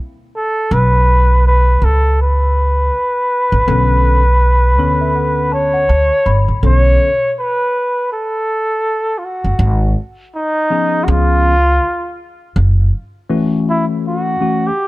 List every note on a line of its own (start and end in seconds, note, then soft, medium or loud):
0.36 0.75 A4 loud
0.71 1.78 B1 loud
0.71 1.46 B4 loud
1.47 1.86 B4 loud
1.82 2.89 C#2 medium
1.82 2.20 A4 medium
2.22 5.49 B4 loud
3.52 3.65 A1 medium
3.67 4.78 B1 loud
3.67 4.22 D3 medium
3.67 4.22 B3 medium
3.67 4.22 C#4 medium
3.67 4.22 A4 medium
4.78 5.85 D2 medium
4.78 5.83 D3 medium
4.78 5.83 B3 medium
4.78 5.84 C#4 medium
4.78 5.84 A4 medium
4.78 4.99 C#5 medium
5.01 5.14 E5 medium
5.16 5.50 F#5 medium
5.52 6.48 C#5 loud
5.52 5.73 A5 medium
5.74 5.88 F#5 medium
5.89 6.09 D2 medium
5.89 6.23 A5 medium
6.26 6.46 G1 medium
6.26 6.60 B5 medium
6.48 6.61 A1 medium
6.62 6.96 B1 medium
6.62 7.09 D3 medium
6.62 7.09 B3 medium
6.62 7.09 C#4 medium
6.62 7.09 A4 medium
6.62 7.34 C#5 loud
7.39 8.08 B4 loud
8.13 9.20 A4 medium
9.18 9.26 F4 medium
9.25 9.97 F#4 medium
9.44 9.58 F#1 medium
9.59 9.92 G#1 loud
10.35 11.06 D#4 loud
10.70 11.06 F3 medium
10.70 11.06 B3 medium
10.70 11.07 C#4 medium
10.70 11.07 G#4 medium
11.04 11.78 C#2 loud
11.04 11.53 F3 medium
11.04 11.53 B3 medium
11.04 11.54 C#4 medium
11.04 11.11 F#4 medium
11.08 12.20 F4 loud
11.08 11.54 G#4 medium
12.56 12.89 F#1 loud
13.30 14.35 E3 medium
13.30 14.35 A3 medium
13.30 14.35 C#4 medium
13.30 14.35 F#4 medium
13.69 13.85 E4 medium
14.07 14.68 F#4 medium
14.40 14.69 E3 medium
14.40 14.69 A3 medium
14.40 14.69 C#4 medium
14.40 14.69 F#4 medium
14.67 14.88 G4 medium